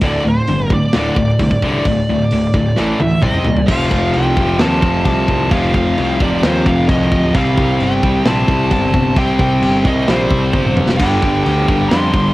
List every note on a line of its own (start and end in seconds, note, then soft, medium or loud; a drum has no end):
0.01 0.16 D1 medium
0.01 0.23 D2 medium
0.01 0.24 A2 medium
0.01 0.24 D3 loud
0.01 0.27 D5 loud
0.01 kick loud
0.01 open hi-hat medium
0.24 0.39 D1 medium
0.24 0.46 D2 medium
0.24 0.46 A2 medium
0.29 0.73 C5 loud
0.47 0.77 G1 medium
0.47 0.69 D2 medium
0.47 0.69 A2 medium
0.47 open hi-hat medium
0.70 0.92 D2 medium
0.70 0.92 A2 medium
0.70 0.96 D5 loud
0.70 kick medium
0.93 1.08 D1 medium
0.93 1.16 D2 medium
0.93 1.16 A2 loud
0.93 1.17 D3 loud
0.93 snare loud
0.93 open hi-hat soft
0.98 3.21 D5 loud
1.16 1.30 D1 medium
1.16 1.38 D2 medium
1.16 1.38 A2 medium
1.16 kick medium
1.39 1.53 C2 medium
1.39 1.61 D2 medium
1.39 1.61 A2 medium
1.39 kick medium
1.39 open hi-hat medium
1.51 kick medium
1.62 1.77 C2 medium
1.62 1.84 D2 medium
1.62 1.85 A2 medium
1.62 1.86 D3 loud
1.62 kick medium
1.85 2.00 D1 medium
1.85 2.06 D2 medium
1.85 2.07 A2 medium
1.85 kick loud
1.85 open hi-hat medium
2.09 2.24 D1 medium
2.09 2.30 D2 medium
2.09 2.30 A2 medium
2.31 2.46 D1 medium
2.31 2.53 D2 medium
2.31 2.53 A2 medium
2.31 open hi-hat medium
2.54 2.68 D1 medium
2.54 2.76 D2 medium
2.54 2.76 A2 medium
2.54 kick medium
2.76 2.92 A1 medium
2.76 2.98 A2 medium
2.76 2.99 E3 medium
2.76 3.00 A3 loud
2.76 snare medium
3.00 3.15 D2 medium
3.00 3.21 A2 medium
3.00 3.21 E3 medium
3.00 3.23 E5 medium
3.00 high tom medium
3.22 3.37 C2 medium
3.22 3.45 C3 medium
3.22 3.45 G3 medium
3.22 3.45 C4 loud
3.22 3.67 D#5 medium
3.22 kick medium
3.22 mid tom medium
3.34 mid tom medium
3.45 3.61 A#2 medium
3.45 3.67 C3 medium
3.45 3.67 G3 medium
3.45 floor tom medium
3.57 floor tom medium
3.67 3.88 F1 loud
3.67 4.59 F2 medium
3.67 4.60 C3 loud
3.67 4.14 F5 loud
3.67 kick loud
3.67 crash loud
3.67 china medium
3.71 4.62 F3 loud
3.91 4.11 F1 medium
3.91 kick medium
4.14 4.35 C2 medium
4.14 4.57 G5 loud
4.14 china medium
4.37 4.57 F1 medium
4.37 5.50 C3 medium
4.37 5.50 F3 medium
4.37 kick medium
4.41 5.48 F2 medium
4.59 4.80 D#2 medium
4.59 5.50 F2 medium
4.59 5.51 C3 medium
4.59 5.52 F3 medium
4.59 5.04 A5 loud
4.59 snare loud
4.59 china medium
4.82 5.03 F1 medium
4.82 kick medium
5.05 5.25 C2 medium
5.05 5.53 A5 loud
5.05 kick medium
5.05 china medium
5.28 5.48 C2 medium
5.28 kick medium
5.51 5.71 F1 loud
5.51 6.41 F2 loud
5.51 6.43 C3 loud
5.51 6.43 F3 loud
5.51 5.73 F5 loud
5.51 kick loud
5.51 china medium
5.74 5.94 F1 medium
5.74 6.17 F5 loud
5.74 kick medium
5.98 6.18 C2 medium
5.98 china medium
6.19 6.40 F1 medium
6.19 7.33 C3 medium
6.19 7.33 F3 loud
6.19 6.45 D5 medium
6.19 kick medium
6.23 7.34 F2 medium
6.42 6.64 D#2 medium
6.42 7.33 F2 medium
6.42 7.34 C3 medium
6.42 7.34 F3 medium
6.42 6.69 C5 loud
6.42 snare loud
6.42 china medium
6.66 6.86 F1 loud
6.66 6.88 F5 loud
6.66 kick medium
6.88 7.08 C2 medium
6.88 7.35 D#5 medium
6.88 kick medium
6.88 china medium
7.12 7.32 D1 medium
7.12 kick medium
7.34 7.54 C2 loud
7.34 8.25 C3 medium
7.34 8.27 G3 medium
7.34 8.28 C4 loud
7.34 7.82 F5 loud
7.34 kick loud
7.34 china medium
7.57 7.77 C2 medium
7.57 kick medium
7.80 8.00 G1 medium
7.80 8.26 G5 loud
7.80 china medium
8.03 8.23 C2 medium
8.03 9.18 G3 medium
8.03 9.16 C4 loud
8.03 kick medium
8.07 9.16 C3 medium
8.25 8.45 A#1 medium
8.25 9.16 C3 medium
8.25 9.17 G3 medium
8.25 9.17 C4 medium
8.25 8.72 A5 loud
8.25 snare loud
8.25 china medium
8.48 8.68 C2 medium
8.48 kick medium
8.71 8.91 G1 loud
8.71 9.18 A5 loud
8.71 kick medium
8.71 china medium
8.93 9.14 G1 medium
8.93 kick medium
9.16 9.36 C2 medium
9.16 10.06 C3 medium
9.16 10.09 G3 loud
9.16 10.08 C4 loud
9.16 9.40 G5 loud
9.16 kick loud
9.16 china medium
9.39 9.59 C2 medium
9.39 9.88 G5 loud
9.39 kick medium
9.61 9.82 G1 medium
9.61 china medium
9.85 10.05 C2 medium
9.85 11.01 G3 medium
9.85 10.98 C4 medium
9.85 10.10 D#5 medium
9.85 kick medium
9.89 10.99 C3 medium
10.07 10.28 A#1 medium
10.07 10.98 C3 medium
10.07 11.00 G3 medium
10.07 10.99 C4 medium
10.07 10.74 C5 medium
10.07 snare loud
10.07 china medium
10.31 10.51 C2 medium
10.31 kick medium
10.53 10.73 G1 medium
10.53 kick medium
10.53 high tom medium
10.65 mid tom medium
10.76 10.96 F1 loud
10.76 mid tom loud
10.89 snare loud
10.98 11.19 G1 medium
10.98 11.90 G2 loud
10.98 11.90 D3 medium
10.98 11.42 G5 loud
10.98 kick loud
10.98 china medium
10.98 crash loud
11.02 11.92 G3 loud
11.22 11.42 G1 medium
11.22 kick medium
11.44 11.65 D2 medium
11.44 11.91 G5 loud
11.44 china medium
11.68 11.88 G1 medium
11.68 12.34 G2 medium
11.68 12.34 D3 medium
11.68 12.34 G3 medium
11.68 kick medium
11.88 12.11 F2 medium
11.88 12.34 G2 medium
11.88 12.34 D3 medium
11.88 12.34 C6 loud
11.88 snare loud
11.88 china medium
11.92 12.34 G3 medium
12.14 12.33 G1 medium
12.14 kick loud